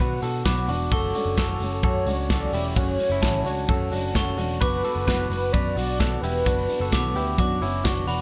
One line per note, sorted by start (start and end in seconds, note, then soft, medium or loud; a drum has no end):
0.00 0.19 B2 loud
0.00 0.22 F#3 medium
0.00 0.23 B3 medium
0.00 0.23 D4 medium
0.00 0.21 F#4 medium
0.00 0.22 B4 medium
0.00 0.45 F#5 loud
0.00 0.54 E6 medium
0.00 hi-hat pedal medium
0.22 0.42 B2 loud
0.22 0.45 B3 soft
0.22 0.46 D4 medium
0.22 0.45 F#4 medium
0.22 0.45 A4 medium
0.22 open hi-hat medium
0.22 tambourine medium
0.45 0.65 B1 medium
0.45 0.68 B2 medium
0.45 0.69 F#3 medium
0.45 0.69 B3 medium
0.45 0.69 D4 loud
0.45 0.68 F#4 loud
0.45 0.69 B4 medium
0.45 0.88 D6 loud
0.45 kick loud
0.45 snare loud
0.45 hi-hat pedal medium
0.45 ride medium
0.45 tambourine medium
0.68 0.88 E1 medium
0.68 0.93 D4 medium
0.68 0.92 F#4 medium
0.68 open hi-hat medium
0.68 tambourine medium
0.72 0.92 B3 soft
0.91 1.11 F#1 loud
0.91 1.15 F#2 medium
0.91 1.15 C#3 medium
0.91 1.15 F#3 medium
0.91 1.15 A3 medium
0.91 1.15 C#4 medium
0.91 1.14 F#4 medium
0.91 1.15 A4 medium
0.91 1.84 A4 loud
0.91 1.36 C#6 medium
0.91 kick loud
0.91 hi-hat pedal medium
0.91 ride medium
0.91 tambourine medium
1.15 1.38 F#3 soft
1.15 1.38 A3 soft
1.15 1.39 C#4 soft
1.15 1.38 D4 medium
1.15 1.38 F#4 medium
1.15 open hi-hat medium
1.15 tambourine medium
1.26 1.55 F#1 loud
1.37 1.61 F#2 medium
1.37 1.61 C#3 medium
1.37 1.62 F#3 medium
1.37 1.62 A3 loud
1.37 1.61 C#4 medium
1.37 1.60 F#4 medium
1.37 1.82 A4 medium
1.37 3.28 C#6 medium
1.37 kick loud
1.37 snare loud
1.37 hi-hat pedal medium
1.37 ride medium
1.37 tambourine medium
1.60 1.80 F#1 medium
1.60 1.83 A3 soft
1.60 1.85 C#4 medium
1.60 1.84 F#4 medium
1.60 open hi-hat medium
1.60 tambourine soft
1.64 1.82 F#3 soft
1.83 2.03 F#2 loud
1.83 2.07 F#3 medium
1.83 2.07 A3 medium
1.83 2.06 C#4 medium
1.83 2.05 F#4 medium
1.83 2.07 A4 medium
1.83 2.31 C#5 loud
1.83 kick loud
1.83 hi-hat pedal medium
1.83 ride medium
2.06 2.46 C#2 loud
2.06 2.29 F#3 soft
2.06 2.30 A3 soft
2.06 2.30 C#4 medium
2.06 2.31 D4 medium
2.06 2.30 F#4 medium
2.06 open hi-hat medium
2.06 tambourine medium
2.29 2.53 F#2 medium
2.29 2.53 C#3 medium
2.29 2.53 F#3 medium
2.29 2.53 A3 medium
2.29 2.52 C#4 medium
2.29 2.51 F#4 medium
2.29 2.54 A4 medium
2.29 2.75 D5 loud
2.29 kick loud
2.29 snare loud
2.29 hi-hat pedal medium
2.29 ride medium
2.29 tambourine medium
2.52 2.73 E1 medium
2.52 2.75 F#3 soft
2.52 2.75 A3 medium
2.52 2.76 C#4 medium
2.52 2.77 E4 medium
2.52 2.76 F#4 medium
2.52 2.76 G4 medium
2.52 open hi-hat medium
2.52 tambourine medium
2.74 2.96 F#1 loud
2.74 2.99 F#2 medium
2.74 2.99 C#3 medium
2.74 2.99 F#3 medium
2.74 2.99 A3 medium
2.74 2.98 C#4 medium
2.74 2.97 F#4 medium
2.74 3.45 C#5 loud
2.74 kick loud
2.74 hi-hat pedal medium
2.74 ride medium
2.74 tambourine medium
2.98 3.20 F#3 soft
2.98 3.20 A3 soft
2.98 3.21 C#4 medium
2.98 3.22 F#4 medium
2.98 open hi-hat medium
2.98 tambourine medium
3.10 3.20 F#1 medium
3.10 3.44 C#4 medium
3.10 3.44 E4 medium
3.20 3.42 A1 medium
3.20 3.45 F#2 medium
3.20 3.45 C#3 medium
3.20 3.45 F#3 medium
3.20 3.44 A3 medium
3.20 3.43 C#4 medium
3.20 3.42 F#4 medium
3.20 4.18 A5 loud
3.20 kick loud
3.20 snare loud
3.20 ride medium
3.20 tambourine medium
3.43 3.65 C#2 loud
3.43 3.65 F#3 soft
3.43 3.67 A3 soft
3.43 3.68 C#4 soft
3.43 3.69 D4 medium
3.43 3.67 F#4 medium
3.43 4.11 C#5 medium
3.43 open hi-hat medium
3.43 tambourine soft
3.66 3.88 F#2 loud
3.66 3.91 F#3 medium
3.66 3.92 A3 medium
3.66 3.91 C#4 medium
3.66 3.89 F#4 medium
3.66 3.92 A4 medium
3.66 kick loud
3.66 hi-hat pedal medium
3.66 ride medium
3.90 4.11 F#1 medium
3.90 4.14 F#3 soft
3.90 4.14 A3 soft
3.90 4.14 C#4 medium
3.90 4.16 D4 medium
3.90 4.14 F#4 medium
3.90 open hi-hat medium
3.90 tambourine medium
4.13 4.35 F#1 loud
4.13 4.37 F#2 medium
4.13 4.38 C#3 medium
4.13 4.38 F#3 loud
4.13 4.38 A3 loud
4.13 4.38 C#4 loud
4.13 4.36 F#4 medium
4.13 4.38 A4 medium
4.13 4.63 C#6 loud
4.13 kick loud
4.13 snare loud
4.13 hi-hat pedal medium
4.13 ride medium
4.13 tambourine medium
4.37 4.57 E1 medium
4.37 4.59 F#3 medium
4.37 4.61 A3 medium
4.37 4.61 C#4 medium
4.37 4.61 D4 medium
4.37 4.61 F#4 medium
4.37 open hi-hat medium
4.37 tambourine soft
4.60 4.81 F#1 medium
4.60 4.84 F#3 medium
4.60 4.84 B3 medium
4.60 4.84 D4 medium
4.60 4.82 F#4 medium
4.60 4.84 B4 loud
4.60 5.54 B4 loud
4.60 5.09 D6 loud
4.60 kick loud
4.60 hi-hat pedal medium
4.60 ride medium
4.60 tambourine medium
4.83 5.06 B3 soft
4.83 5.07 D4 soft
4.83 5.07 F#4 medium
4.83 5.07 A4 medium
4.83 open hi-hat medium
4.83 tambourine medium
4.96 5.25 F#1 loud
5.06 5.30 F#3 medium
5.06 5.31 B3 loud
5.06 5.30 D4 medium
5.06 5.28 F#4 medium
5.06 5.51 B4 medium
5.06 6.98 F#6 loud
5.06 kick loud
5.06 snare loud
5.06 ride medium
5.06 tambourine medium
5.29 5.50 F#1 medium
5.29 5.52 B3 medium
5.29 5.53 D4 medium
5.29 5.53 F#4 medium
5.29 open hi-hat medium
5.29 tambourine soft
5.52 5.73 F#2 loud
5.52 5.76 F#3 medium
5.52 5.77 B3 medium
5.52 5.76 D4 medium
5.52 5.74 F#4 medium
5.52 5.77 B4 medium
5.52 6.21 D5 loud
5.52 kick loud
5.52 hi-hat pedal medium
5.52 ride medium
5.75 6.16 B1 loud
5.75 5.98 B3 soft
5.75 5.99 D4 soft
5.75 5.99 F#4 medium
5.75 open hi-hat medium
5.75 tambourine medium
5.99 6.22 F#3 medium
5.99 6.23 B3 medium
5.99 6.23 D4 medium
5.99 6.21 F#4 medium
5.99 6.23 A4 medium
5.99 kick loud
5.99 snare loud
5.99 ride medium
5.99 tambourine medium
6.21 6.43 E1 medium
6.21 6.45 B3 soft
6.21 6.46 D4 medium
6.21 6.47 E4 medium
6.21 6.46 F#4 medium
6.21 6.46 G4 medium
6.21 7.80 B4 loud
6.21 open hi-hat medium
6.21 tambourine soft
6.45 6.66 F#1 loud
6.45 6.69 F#3 medium
6.45 6.69 B3 medium
6.45 6.69 D4 medium
6.45 6.68 F#4 medium
6.45 kick loud
6.45 hi-hat pedal medium
6.45 ride medium
6.45 tambourine medium
6.69 6.92 B3 soft
6.69 6.93 D4 soft
6.69 6.92 F#4 medium
6.69 open hi-hat medium
6.69 tambourine medium
6.80 6.90 F#1 loud
6.80 7.14 F#4 medium
6.80 7.14 A4 medium
6.92 7.12 B1 medium
6.92 7.16 F#3 loud
6.92 7.16 B3 loud
6.92 7.16 D4 loud
6.92 7.14 F#4 loud
6.92 7.36 D6 loud
6.92 kick loud
6.92 snare loud
6.92 hi-hat pedal medium
6.92 ride medium
6.92 tambourine medium
7.15 7.35 D2 medium
7.15 7.40 D4 medium
7.15 7.39 E4 medium
7.15 7.39 F#4 medium
7.15 7.39 G4 medium
7.15 open hi-hat medium
7.15 tambourine soft
7.19 7.39 B3 soft
7.38 7.58 F#2 loud
7.38 7.62 F#3 medium
7.38 7.62 B3 medium
7.38 7.62 D4 medium
7.38 7.60 F#4 medium
7.38 7.87 D6 medium
7.38 kick loud
7.38 hi-hat pedal medium
7.38 ride medium
7.38 tambourine soft
7.61 7.81 F#1 medium
7.61 7.85 B3 soft
7.61 7.85 C#4 medium
7.61 7.86 D4 medium
7.61 7.85 E4 medium
7.61 7.85 F#4 medium
7.61 open hi-hat medium
7.61 tambourine medium
7.85 8.04 F#1 medium
7.85 8.08 F#3 medium
7.85 8.09 B3 medium
7.85 8.08 D4 loud
7.85 8.06 F#4 loud
7.85 8.07 C#6 loud
7.85 kick loud
7.85 snare loud
7.85 hi-hat pedal medium
7.85 ride medium
7.85 tambourine medium
8.08 8.21 E1 medium
8.08 8.21 B3 soft
8.08 8.21 D4 soft
8.08 8.21 F#4 medium
8.08 8.21 B5 medium
8.08 open hi-hat medium
8.08 tambourine soft